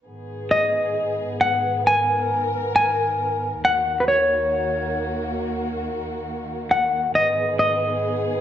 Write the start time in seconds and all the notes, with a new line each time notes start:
0.05 G#2 D#3 B3 G#4
0.51 D#5
1.41 F#5
1.85 A#4 G#5
2.76 G#5
3.61 D#2 A#3 F#4 F#5
4.00 B4
4.08 C#5
6.71 F#5
7.12 G#2 B3 G#4 D#5
7.59 D#5